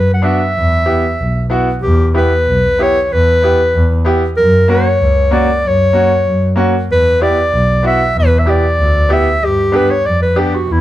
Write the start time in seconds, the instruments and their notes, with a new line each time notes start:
Already playing: double bass F#2, clarinet B4
0.14 clarinet F#5
0.22 upright piano B3 D4 F#4, clarinet E5
0.56 double bass E2
0.86 upright piano B3 E4 G4
1.20 double bass B1
1.50 upright piano B3 E4 F#4
1.82 double bass E2, clarinet G4
2.14 upright piano B3 E4 G4, clarinet B4
2.47 double bass B1
2.78 upright piano B3 E4 G4, clarinet C#5
3.02 clarinet C#5
3.11 double bass E2, clarinet B4
3.42 upright piano B3 E4 G4
3.75 double bass E2
4.05 upright piano B3 E4 G4
4.36 double bass F#2, clarinet A#4
4.68 upright piano A#3 C#4 F#4, clarinet C#5
5.00 double bass C#2
5.31 upright piano A#3 C#4 F#4, clarinet D5
5.63 double bass F#2, clarinet C#5
5.93 upright piano A#3 C#4 F#4
6.26 double bass F#2
6.56 upright piano A#3 C#4 F#4
6.89 double bass E2, clarinet B4
7.20 upright piano B3 E4 G4, clarinet D5
7.52 double bass B1
7.83 upright piano B3 E4 F#4, clarinet E5
8.15 double bass E2, clarinet B4
8.39 clarinet E5
8.46 upright piano B3 E4 G4
8.50 clarinet D5
8.79 double bass D2
9.09 upright piano B3 E4 G4
9.13 clarinet E5
9.42 double bass G2, clarinet G4
9.72 upright piano B3 D4 G4, clarinet B4
9.91 clarinet C#5
10.05 double bass F2, clarinet D5
10.22 clarinet B4
10.36 upright piano B3 D4 G4, clarinet G4
10.55 clarinet F#4
10.68 double bass E2
10.72 clarinet E4